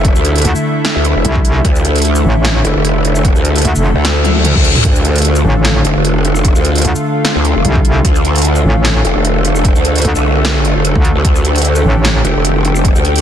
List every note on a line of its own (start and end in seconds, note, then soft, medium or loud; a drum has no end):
0.00 0.14 F1 loud
0.00 13.21 D3 medium
0.00 13.21 A3 medium
0.00 4.83 E4 loud
0.05 kick loud
0.05 closed hi-hat medium
0.15 0.43 D2 medium
0.15 shaker medium
0.25 closed hi-hat medium
0.35 closed hi-hat soft
0.38 closed hi-hat medium
0.42 closed hi-hat medium
0.45 0.54 D2 loud
0.45 closed hi-hat medium
0.56 shaker medium
0.85 snare loud
0.85 closed hi-hat medium
0.96 1.14 D2 loud
1.05 closed hi-hat soft
1.16 1.23 F1 medium
1.25 1.63 C2 loud
1.25 closed hi-hat medium
1.36 kick loud
1.45 closed hi-hat medium
1.65 2.23 D2 loud
1.65 kick loud
1.65 closed hi-hat medium
1.76 shaker medium
1.85 closed hi-hat medium
1.96 closed hi-hat soft
1.98 closed hi-hat medium
2.02 closed hi-hat medium
2.05 closed hi-hat medium
2.16 shaker medium
2.25 2.63 A1 loud
2.45 snare loud
2.45 closed hi-hat medium
2.65 2.74 F1 loud
2.65 closed hi-hat medium
2.75 3.34 F1 loud
2.85 closed hi-hat medium
3.05 closed hi-hat medium
3.15 shaker medium
3.25 kick loud
3.25 closed hi-hat medium
3.35 3.63 D2 loud
3.35 shaker medium
3.45 closed hi-hat medium
3.56 closed hi-hat medium
3.58 closed hi-hat medium
3.62 3.74 D2 medium
3.62 closed hi-hat medium
3.65 closed hi-hat medium
3.75 3.94 F1 loud
3.75 shaker medium
3.96 4.54 D2 loud
4.05 snare loud
4.05 closed hi-hat medium
4.05 reverse cymbal medium
4.25 closed hi-hat medium
4.25 high tom medium
4.36 high tom medium
4.45 closed hi-hat medium
4.45 mid tom medium
4.55 4.83 D2 loud
4.55 kick loud
4.55 mid tom medium
4.65 closed hi-hat medium
4.76 closed hi-hat soft
4.76 mid tom medium
4.85 5.43 D2 loud
4.85 11.23 F4 medium
4.85 kick loud
4.85 closed hi-hat medium
4.96 shaker medium
5.05 closed hi-hat medium
5.16 closed hi-hat medium
5.18 closed hi-hat medium
5.22 closed hi-hat medium
5.25 closed hi-hat medium
5.36 shaker medium
5.45 5.83 A1 loud
5.65 snare loud
5.65 closed hi-hat medium
5.85 5.94 F1 loud
5.85 closed hi-hat medium
5.96 6.54 F1 medium
6.05 closed hi-hat medium
6.25 closed hi-hat medium
6.35 shaker medium
6.45 kick loud
6.45 closed hi-hat medium
6.55 6.83 D2 loud
6.55 shaker medium
6.65 closed hi-hat medium
6.75 closed hi-hat medium
6.78 closed hi-hat medium
6.82 closed hi-hat medium
6.85 6.94 D2 loud
6.85 closed hi-hat medium
6.96 shaker medium
7.25 snare loud
7.25 closed hi-hat medium
7.36 7.54 D2 loud
7.45 closed hi-hat medium
7.56 7.63 F1 medium
7.65 8.03 C2 loud
7.65 closed hi-hat medium
7.76 kick loud
7.85 closed hi-hat medium
8.05 8.63 D2 loud
8.05 kick loud
8.05 closed hi-hat medium
8.16 shaker medium
8.25 closed hi-hat medium
8.36 closed hi-hat medium
8.38 closed hi-hat medium
8.42 closed hi-hat medium
8.45 closed hi-hat medium
8.56 shaker medium
8.65 9.03 A1 loud
8.85 snare loud
8.85 closed hi-hat medium
9.05 9.14 F1 loud
9.05 closed hi-hat medium
9.16 9.74 F1 medium
9.25 closed hi-hat medium
9.45 closed hi-hat medium
9.55 shaker medium
9.65 kick loud
9.65 closed hi-hat medium
9.76 10.03 D2 loud
9.76 shaker medium
9.85 closed hi-hat medium
9.96 closed hi-hat soft
9.98 closed hi-hat medium
10.02 10.14 D2 loud
10.02 closed hi-hat medium
10.05 closed hi-hat medium
10.16 10.74 C2 loud
10.16 shaker medium
10.45 snare loud
10.45 closed hi-hat medium
10.65 closed hi-hat medium
10.76 10.94 F1 medium
10.85 closed hi-hat medium
10.96 11.14 D2 loud
10.96 kick loud
11.05 closed hi-hat medium
11.16 11.23 D2 loud
11.25 11.83 D2 loud
11.25 13.21 G4 loud
11.25 kick loud
11.25 closed hi-hat medium
11.35 shaker medium
11.45 closed hi-hat soft
11.55 closed hi-hat soft
11.58 closed hi-hat medium
11.62 closed hi-hat medium
11.65 closed hi-hat medium
11.76 shaker medium
11.85 12.23 A1 loud
12.05 snare loud
12.05 closed hi-hat medium
12.25 12.34 F1 loud
12.25 closed hi-hat soft
12.36 12.94 F1 loud
12.45 closed hi-hat medium
12.65 closed hi-hat medium
12.76 shaker medium
12.85 kick loud
12.85 closed hi-hat medium
12.96 13.21 D2 loud
12.96 shaker medium
13.05 closed hi-hat medium
13.16 closed hi-hat soft
13.18 closed hi-hat medium